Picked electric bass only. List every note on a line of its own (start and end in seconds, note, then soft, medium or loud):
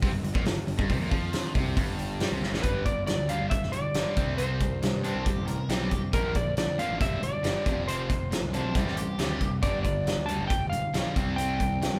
0.03 0.12 C2 medium
0.12 0.23 G1 medium
0.23 0.34 G1 medium
0.35 0.45 A#1 medium
0.45 0.56 G1 medium
0.56 0.66 G1 medium
0.67 0.77 G1 medium
0.79 0.89 G1 medium
0.90 0.99 C2 medium
1.00 1.10 A#1 medium
1.11 1.52 F2 medium
1.55 1.75 C2 medium
1.77 2.17 G1 medium
2.20 2.30 G2 medium
2.31 2.41 C2 medium
2.42 2.52 G1 medium
2.53 2.63 A#1 medium
2.64 3.14 G1 medium
3.18 3.38 D2 medium
3.40 3.50 G1 medium
3.62 3.82 E1 medium
3.94 4.04 G1 medium
4.17 4.89 C2 medium
4.93 5.13 G2 medium
5.15 5.25 C2 medium
5.37 5.56 A1 medium
5.69 5.89 B1 medium
6.13 6.63 A#1 medium
6.67 6.87 F2 medium
6.89 6.99 A1 medium
7.01 7.10 G1 medium
7.10 7.31 E1 medium
7.43 7.54 G1 medium
7.66 8.38 F1 medium
8.42 8.62 C2 medium
8.64 8.74 B1 medium
8.75 8.85 C2 medium
8.86 9.06 A1 medium
9.19 9.39 D2 medium
9.63 10.13 G1 medium
10.17 10.37 D2 medium
10.39 10.49 G1 medium
10.61 10.81 E1 medium
10.94 11.04 B1 medium
11.16 11.88 C2 medium
11.92 11.99 G2 medium